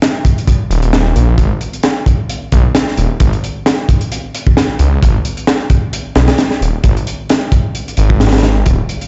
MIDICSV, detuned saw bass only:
0, 0, Header, 1, 2, 480
1, 0, Start_track
1, 0, Tempo, 454545
1, 1465, Time_signature, 4, 2, 24, 8
1, 9585, End_track
2, 0, Start_track
2, 0, Title_t, "Detuned saw bass"
2, 0, Program_c, 0, 39
2, 744, Note_on_c, 0, 27, 85
2, 1189, Note_off_c, 0, 27, 0
2, 1224, Note_on_c, 0, 34, 99
2, 1420, Note_off_c, 0, 34, 0
2, 1456, Note_on_c, 0, 32, 97
2, 1565, Note_off_c, 0, 32, 0
2, 2666, Note_on_c, 0, 35, 91
2, 2770, Note_off_c, 0, 35, 0
2, 3144, Note_on_c, 0, 27, 89
2, 3249, Note_off_c, 0, 27, 0
2, 3382, Note_on_c, 0, 32, 96
2, 3488, Note_off_c, 0, 32, 0
2, 5065, Note_on_c, 0, 37, 88
2, 5261, Note_off_c, 0, 37, 0
2, 5308, Note_on_c, 0, 32, 99
2, 5411, Note_off_c, 0, 32, 0
2, 6504, Note_on_c, 0, 35, 90
2, 6609, Note_off_c, 0, 35, 0
2, 6982, Note_on_c, 0, 27, 85
2, 7088, Note_off_c, 0, 27, 0
2, 7221, Note_on_c, 0, 32, 98
2, 7327, Note_off_c, 0, 32, 0
2, 8424, Note_on_c, 0, 32, 104
2, 9109, Note_off_c, 0, 32, 0
2, 9149, Note_on_c, 0, 27, 100
2, 9251, Note_off_c, 0, 27, 0
2, 9585, End_track
0, 0, End_of_file